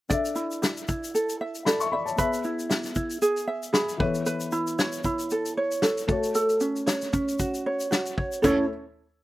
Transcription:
0.09 D4 A4 D5 E5, kick, shaker
0.25 shaker
0.35 E4, shaker
0.51 shaker
0.62 E5, snare, shaker
0.77 shaker
0.88 E4, kick, shaker
1.04 shaker
1.15 A4, shaker
1.29 shaker
1.41 E5
1.55 shaker
1.65 A4 D5 B5, snare, shaker
1.80 E5 C#6, shaker
1.92 D5 E5 B5
2.06 C#5 A5, shaker
2.16 B3 G#4 B4 E5, kick, shaker
2.33 shaker
2.44 E4, shaker
2.59 shaker
2.69 E5, snare, shaker
2.83 snare, shaker
2.85 shaker
2.95 E4, kick, shaker
3.10 shaker
3.22 G#4, shaker
3.37 shaker
3.47 E5
3.63 shaker
3.73 G#4 B5, snare, shaker
3.89 shaker
3.98 E3 B3 A4 B4 C#5, kick
4.15 shaker
4.26 B4, shaker
4.40 shaker
4.52 E4, shaker
4.67 shaker
4.79 C#5, snare, shaker
4.92 shaker
5.04 E4, kick, shaker
5.19 shaker
5.30 A4, shaker
5.45 shaker
5.57 C#5
5.71 shaker
5.82 A4, snare, shaker
5.84 shaker
5.98 shaker
6.07 A3 F#4 A4 C#5, kick, shaker
6.23 shaker
6.34 A4, shaker
6.49 shaker
6.60 C#4, shaker
6.76 shaker
6.86 C#5, snare, shaker
6.89 shaker
7.01 snare, shaker
7.13 C#4, kick, shaker
7.28 shaker
7.39 F#4, kick, shaker
7.54 shaker
7.66 C#5
7.80 shaker
7.91 F#4, snare, shaker
8.06 shaker
8.17 C#5, kick
8.32 shaker
8.42 A3 C#4 E4 A4 C#5, kick, floor tom, china, shaker

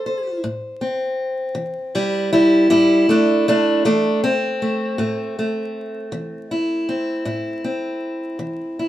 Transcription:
Already playing: A4
0.06 C5
0.44 A2
0.81 C4
1.55 E3
1.95 G3 E4
2.33 G3 E4
2.70 A2 G3 E4
3.09 A3 D4
3.48 A3 D4
3.85 E3 A3 D4
4.24 C4
4.62 A3
4.98 A2 A3
5.39 A3
6.12 E3
6.51 E4
6.89 C4
7.25 A2 E4
7.64 C4
8.39 E3
8.79 E4

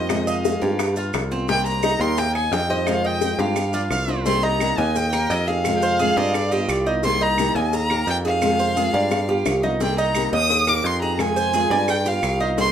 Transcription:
Already playing: F2 C5 D#5
0.09 C3 D#3 G#3 C4 F4, high bongo, claves, maracas
0.27 D#5 F5, high bongo, maracas
0.45 D#3 G#3 C4 F4, high bongo, maracas
0.62 G2 D#3 G#3 C4 F4 G4, high bongo, maracas
0.79 muted nylon-string guitar stroke, high bongo, claves, maracas
0.96 F4, high bongo, maracas
1.13 C2, high bongo, low bongo, claves, maracas
1.31 B3 C4 F4, maracas
1.48 C3 G3 A#3 C4 D#4 G4 G5, high bongo, maracas
1.66 A#5, maracas
1.83 G3 A#3 D#4 G4, high bongo, claves, maracas
2.00 D#2 G3 A#3 D#4 G4 A#4 C6, maracas
2.17 G5, muted nylon-string guitar stroke, high bongo, maracas
2.35 D#5 G#5, claves
2.52 F2 G5, high bongo, low bongo, maracas
2.69 G3 A#3 D#4 G4 C5 D#5, maracas
2.87 C3 D#3 G#3 C4 F4 F5, high bongo, claves, maracas
3.04 D#5 G5, high bongo
3.21 D#3 G#3 C4 F4, high bongo, maracas
3.38 G2 D#3 G#3 C4 F4 G4 F5, high bongo, maracas
3.56 muted nylon-string guitar stroke, high bongo, claves, maracas
3.73 F4 D5, low bongo, maracas
3.91 C2 F5, low bongo, claves, maracas
4.08 B3 C4 F4, low bongo, maracas
4.25 C3 G3 A#3 C4 D#4 G4 C6, cowbell, maracas
4.43 D#4 A#5
4.60 C3 G3 A#3 D#4 G4, cowbell, claves, maracas
4.78 D#2 A#3 D#4 G4 D#5 G#5, cowbell, maracas
4.95 G5, muted nylon-string guitar stroke, cowbell, maracas
5.13 A#3 D#4 G4 A#4, cowbell, claves, maracas
5.30 F2 D#5, cowbell, maracas
5.48 A#3 D#4 G4 G#4 F5, maracas
5.64 C3 D#3 G#3 C4 F4, cowbell, claves, maracas
5.76 G5
5.82 C5 F5, maracas
5.99 C3 D#3 G#3 C4 F4 G#4, cowbell, maracas
6.17 G2 G#3 C4 F4 D5 D#5, cowbell, maracas
6.34 D5, muted nylon-string guitar stroke, cowbell, claves, maracas
6.51 B3 F4 G4 D#5, maracas
6.68 C2 D5, cowbell, claves, maracas
6.86 B3 D#4 F4, maracas
7.03 C3 G3 A#3 C4 D#4 G4 C6, cowbell, maracas
7.21 D#4 A#5
7.38 C3 G3 A#3 D#4 G4, cowbell, claves, maracas
7.55 D#2 A#3 D#4 G4 D#5 G#5, cowbell, maracas
7.73 A#5, muted nylon-string guitar stroke, cowbell, maracas
7.90 A#3 D#4 G4 A#4, cowbell, claves
8.07 F2 G5, cowbell, maracas
8.24 A#3 D#4 G4 G#4 F5, maracas
8.42 C3 D#3 G#3 C4 F4, cowbell, claves, maracas
8.59 C5, maracas
8.76 C3 D#3 G#3 C4 F4 G#4, cowbell, maracas
8.94 G2 G#3 C4 F4 D5, cowbell, maracas
9.11 muted nylon-string guitar stroke, cowbell, high bongo, claves, maracas
9.28 B3 F4 G4
9.46 C2, cowbell, low bongo, claves, maracas
9.63 B3 D#4 F4, low bongo, maracas
9.80 C3 G3 A#3 C4 D#4 G4 G5, cowbell, maracas
9.98 D#4 A#5, maracas
10.15 C3 G3 A#3 D#4 G4, cowbell, claves, maracas
10.33 D#2 A#3 D#4 G4 D#5 D#6, cowbell, maracas
10.50 muted nylon-string guitar stroke, cowbell, maracas
10.67 A#3 D#4 G4 A#4 D6, cowbell, claves, maracas
10.84 F2 C6, cowbell, maracas
11.01 A#3 D#4 G4 G#4 A#5, maracas
11.18 C3 D#3 G#3 C4 F4 G#5, cowbell, claves, maracas
11.36 C5, maracas
11.53 C3 D#3 G#3 C4 F4 G#4, cowbell, maracas
11.70 G2 G#3 C4 F4 D5, cowbell, maracas
11.88 G5, muted nylon-string guitar stroke, cowbell, claves, maracas
12.05 B3 F4 G4 F5, maracas
12.23 C2, cowbell, claves, maracas
12.40 B3 D#4 F4, maracas
12.57 C3 G3 A#3 C4 D#4 G4 C6, cowbell, maracas

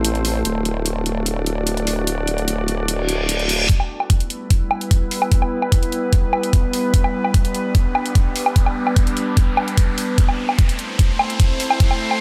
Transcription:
Already playing: A1 A3 C4 E4 C5
0.05 closed hi-hat
0.15 closed hi-hat
0.25 open hi-hat
0.45 D1 D4 F#4 D5, closed hi-hat
0.65 closed hi-hat
0.86 closed hi-hat
1.06 closed hi-hat
1.26 closed hi-hat
1.46 closed hi-hat
1.67 closed hi-hat
1.77 closed hi-hat
1.87 open hi-hat
2.07 closed hi-hat
2.27 closed hi-hat
2.38 closed hi-hat
2.48 closed hi-hat
2.68 closed hi-hat
2.88 closed hi-hat, reverse cymbal
3.09 closed hi-hat
3.29 closed hi-hat
3.39 closed hi-hat
3.49 open hi-hat
3.69 G3 B3 E4 B4, kick, closed hi-hat, riser
3.80 low woodblock
4.00 low woodblock
4.10 kick, closed hi-hat
4.20 closed hi-hat
4.30 closed hi-hat
4.50 kick, closed hi-hat
4.71 low woodblock
4.81 closed hi-hat
4.91 kick, closed hi-hat
5.11 open hi-hat
5.22 low woodblock
5.32 kick, closed hi-hat
5.42 low woodblock
5.62 low woodblock
5.72 kick, closed hi-hat
5.83 closed hi-hat
5.92 closed hi-hat
6.13 kick, closed hi-hat
6.33 low woodblock
6.43 closed hi-hat
6.53 kick, closed hi-hat
6.73 open hi-hat
6.94 D4, kick, closed hi-hat
7.04 low woodblock
7.25 low woodblock
7.34 kick, closed hi-hat
7.45 closed hi-hat
7.55 closed hi-hat
7.75 kick, closed hi-hat
7.95 low woodblock
8.06 closed hi-hat
8.15 kick, closed hi-hat
8.36 open hi-hat
8.46 low woodblock
8.56 kick, closed hi-hat
8.66 low woodblock
8.87 low woodblock
8.96 kick, closed hi-hat
9.07 closed hi-hat
9.17 closed hi-hat
9.37 kick, closed hi-hat
9.57 low woodblock
9.68 closed hi-hat
9.77 kick, closed hi-hat
9.98 open hi-hat
10.18 A3 C4 E4 C5, kick, closed hi-hat
10.29 low woodblock
10.49 low woodblock
10.59 kick, closed hi-hat
10.69 closed hi-hat
10.79 closed hi-hat
10.99 kick, closed hi-hat
11.19 low woodblock
11.30 closed hi-hat
11.40 kick, closed hi-hat
11.60 open hi-hat
11.70 low woodblock
11.80 kick, closed hi-hat
11.91 low woodblock
12.11 low woodblock

